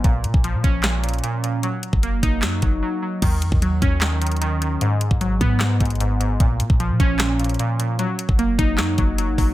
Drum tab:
CC |--------------------------------|--------------------------------|x-------------------------------|--------------------------------|
HH |x---x---x---x---x---xxxxx---x---|x---x---x---x---x---x-----------|x---x---x---x---x---xxxxx---x---|x---x---x---x---x---xxxxx---x---|
CP |----------------x---------------|----------------x---------------|----------------x---------------|----------------x---------------|
SD |----------------o---------------|----------------o---------------|----------------o---------------|----------------o---------------|
BD |o-----o-----o-------------------|------o-----o-------o-----------|o-----o-----o-------------------|------o-----o-------o-----------|

CC |--------------------------------|--------------------------------|
HH |x---x---x---x---x---xxxxx---x---|x---x---x---x---x---x---x---o---|
CP |----------------x---------------|----------------x---------------|
SD |----------------o---------------|----------------o---------------|
BD |o-----o-----o-------------------|------o-----o-------o-------o---|